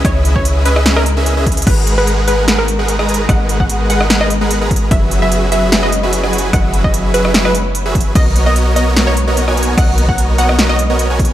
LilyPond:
<<
  \new Staff \with { instrumentName = "Synth pluck" } { \time 4/4 \key gis \minor \tempo 4 = 148 cis''8 r16 cis''8 r16 b'8 r16 ais'4. r16 | b'8 r16 b'8 r16 b'8 r16 ais'4. r16 | fis''8 r16 fis''8 r16 fis''8 r16 dis''4. r16 | e''8 r16 e''8 r16 e''8 r16 dis''4. r16 |
fis''8 r16 dis''8 r16 b'8 r16 b'4. r16 | dis''8 r16 dis''8 r16 dis''8 r16 cis''4. r16 | fis''8 r16 fis''8 r16 fis''8 r16 dis''4. r16 | }
  \new Staff \with { instrumentName = "Supersaw synth" } { \time 4/4 \key gis \minor cis'8. <cis' gis' b' dis'' e''>8. <cis' gis' b' dis'' e''>8 <cis' gis' b' dis'' e''>8 r16 <cis' gis' b' dis'' e''>8 <cis' gis' b' dis'' e''>8. | <gis gis' ais' b' fis''>8. <gis gis' ais' b' fis''>8. <gis gis' ais' b' fis''>8 <gis gis' ais' b' fis''>8 r16 <gis gis' ais' b' fis''>8 <gis gis' ais' b' ais''>8. | <gis gis' ais' b' fis''>8. <gis gis'>8. <gis gis' ais' b' fis''>8 <gis gis' ais' b' fis''>8 r16 <gis gis' ais' b' fis''>8 <gis gis' ais' b' ais''>8. | <fis fis' gis' b' e''>8. <fis fis' gis' b' e''>8. <fis fis' gis' b' e''>8 <fis fis' gis' b' e''>8 r16 <fis fis' gis' b' e''>8 <fis fis' gis' b' gis''>8. |
<fis b'>8. <fis fis' gis' b' e''>8. <fis fis' gis' b' e''>8 <fis fis' gis' b' e''>8 r8. <fis fis' gis' b' e''>8. | <b fis' ais' cis'' dis''>8. <b fis' ais' cis'' dis''>8. <b fis' ais' cis'' dis''>8 <b fis' ais' cis'' dis''>8 r16 <b fis' ais' cis'' dis''>8 <b fis' ais' cis'' gis''>8. | <cis'' dis''>8. <b fis' ais' cis'' dis''>8. <b fis' ais' cis'' dis''>8 <b fis' ais' cis'' dis''>8 r16 <b fis' ais' cis'' dis''>8 <b fis' ais' cis'' gis''>8. | }
  \new Staff \with { instrumentName = "String section" } { \time 4/4 \key gis \minor << { e'1 | b1~ | b1~ | b1~ |
b1 | dis'1~ | dis'1 | } \\ { <cis gis b>1 | <gis dis' fis'>1~ | <gis dis' fis'>1 | <fis cis' e'>1~ |
<fis cis' e'>1 | <ais b>1~ | <ais b>1 | } >> }
  \new Staff \with { instrumentName = "808-style bass" } { \clef bass \time 4/4 \key gis \minor cis,1 | gis,,1 | gis,,1 | fis,,1 |
fis,,1 | b,,1 | b,,1 | }
  \new DrumStaff \with { instrumentName = "Drums" } \drummode { \time 4/4 <hh bd ss>8 hh16 bd16 hh8 hh16 ss16 <hh sn>16 ss16 hh8 hh8 <hh bd>32 hh32 hh32 hh32 | <cymc hh bd>8 hh8 hh8 hh8 <hh sn>8 hh8 hh16 ss16 hh32 hh16. | <hh bd ss>8 hh16 bd16 hh8 hh16 ss16 <hh sn>16 ss16 hh8 hh8 <hh bd>32 hh16. | <hh bd>8 hh8 hh8 hh8 <hh sn>8 hh8 hh16 ss16 hh32 hh16. |
<hh bd ss>8 hh16 bd16 hh8 hh16 ss16 <hh sn>16 ss16 hh8 hh8 <hh bd>32 hh16. | <cymc hh bd>8 hh8 hh8 hh8 <hh sn>8 hh8 hh16 ss16 hh32 hh16. | <cymc hh bd ss>8 hh16 bd16 hh8 hh16 ss16 <hh sn>16 ss16 hh8 hh8 <hh bd>32 hh16. | }
>>